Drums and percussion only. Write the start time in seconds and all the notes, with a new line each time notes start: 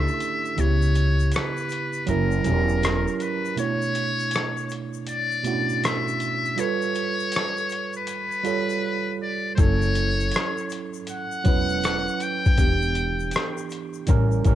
0.08 shaker
0.20 closed hi-hat, shaker
0.45 shaker
0.58 closed hi-hat, shaker
0.82 shaker
0.95 closed hi-hat, shaker
1.20 shaker
1.32 closed hi-hat, shaker
1.36 cross-stick
1.57 shaker
1.69 closed hi-hat, shaker
1.93 shaker
2.07 closed hi-hat, shaker
2.31 shaker
2.44 closed hi-hat, shaker
2.69 shaker
2.83 cross-stick, closed hi-hat, shaker
3.08 shaker
3.20 closed hi-hat, shaker
3.45 shaker
3.57 closed hi-hat, shaker
3.82 shaker
3.95 closed hi-hat, shaker
4.20 shaker
4.31 closed hi-hat, shaker
4.36 cross-stick
4.57 shaker
4.69 closed hi-hat, shaker
4.94 shaker
5.07 closed hi-hat, shaker
5.31 shaker
5.44 closed hi-hat, shaker
5.69 shaker
5.84 cross-stick, closed hi-hat, shaker
6.08 shaker
6.20 closed hi-hat, shaker
6.45 shaker
6.58 closed hi-hat, shaker
6.82 shaker
6.95 closed hi-hat, shaker
7.20 shaker
7.32 closed hi-hat, shaker
7.36 cross-stick
7.57 shaker
7.69 closed hi-hat, shaker
7.93 shaker
8.07 closed hi-hat, shaker
8.32 shaker
8.45 closed hi-hat, shaker
8.69 shaker
9.58 kick, closed hi-hat, shaker
9.82 shaker
9.95 closed hi-hat, shaker
10.20 shaker
10.31 closed hi-hat, shaker
10.36 cross-stick
10.58 shaker
10.70 closed hi-hat, shaker
10.94 shaker
11.07 closed hi-hat, shaker
11.31 shaker
11.45 kick, closed hi-hat, shaker
11.69 shaker
11.84 cross-stick, closed hi-hat, shaker
12.08 shaker
12.20 closed hi-hat, shaker
12.45 kick, shaker
12.58 kick, closed hi-hat, shaker
12.82 shaker
12.95 closed hi-hat, shaker
13.20 shaker
13.31 closed hi-hat, shaker
13.36 cross-stick
13.58 shaker
13.70 closed hi-hat, shaker
13.94 shaker
14.07 kick, closed hi-hat, shaker
14.31 shaker
14.44 kick, closed hi-hat, shaker